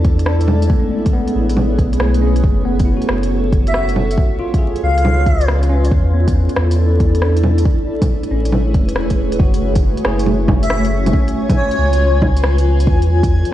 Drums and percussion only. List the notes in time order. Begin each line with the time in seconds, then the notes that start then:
0.04 kick, closed hi-hat
0.19 closed hi-hat
0.26 cross-stick
0.41 closed hi-hat
0.48 low bongo
0.62 closed hi-hat
0.70 kick
1.06 kick, closed hi-hat
1.28 closed hi-hat
1.49 closed hi-hat
1.57 low bongo
1.78 kick, closed hi-hat
1.93 closed hi-hat
2.00 cross-stick
2.14 closed hi-hat
2.36 closed hi-hat
2.44 kick
2.80 kick, closed hi-hat
3.02 closed hi-hat
3.09 cross-stick
3.23 closed hi-hat
3.52 kick, closed hi-hat
3.67 closed hi-hat
3.74 cross-stick
3.89 closed hi-hat
3.96 low bongo
4.11 closed hi-hat
4.18 kick
4.54 kick, closed hi-hat
4.76 closed hi-hat
4.98 closed hi-hat
5.05 low bongo
5.26 kick, closed hi-hat
5.41 closed hi-hat
5.48 cross-stick
5.63 closed hi-hat
5.85 closed hi-hat
5.91 kick
6.28 kick, closed hi-hat
6.49 closed hi-hat
6.56 cross-stick
6.71 closed hi-hat
7.00 kick, closed hi-hat
7.15 closed hi-hat
7.22 cross-stick
7.37 closed hi-hat
7.43 low bongo
7.58 closed hi-hat
7.65 kick
8.02 kick, closed hi-hat, low bongo
8.23 closed hi-hat
8.45 closed hi-hat
8.52 low bongo
8.74 kick, closed hi-hat
8.89 closed hi-hat
8.96 cross-stick
9.10 kick, closed hi-hat
9.32 closed hi-hat
9.40 kick
9.54 closed hi-hat
9.75 kick, closed hi-hat
9.97 closed hi-hat
10.05 cross-stick
10.19 closed hi-hat
10.26 low bongo
10.48 kick, low bongo
10.63 closed hi-hat
10.70 cross-stick
10.85 closed hi-hat
11.06 closed hi-hat, low bongo
11.13 kick
11.28 closed hi-hat
11.50 kick, closed hi-hat, low bongo
11.71 closed hi-hat
11.93 closed hi-hat
12.22 kick, low bongo
12.37 closed hi-hat
12.44 cross-stick
12.58 closed hi-hat
12.80 closed hi-hat
12.87 kick
13.02 closed hi-hat
13.23 kick, closed hi-hat
13.45 closed hi-hat